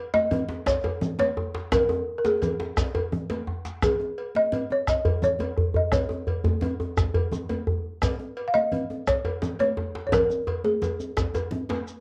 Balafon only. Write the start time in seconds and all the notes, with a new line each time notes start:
0.14 D#5
0.67 C#5
1.20 C#5
1.72 A#4
2.18 A#4
2.26 G#4
3.84 G#4
4.36 D#5
4.72 C#5
4.89 D#5
5.24 C#5
5.76 D#5
5.92 C#5
8.48 F5
8.54 D#5
9.08 C#5
9.60 C#5
10.07 C#5
10.13 A#4
10.65 G#4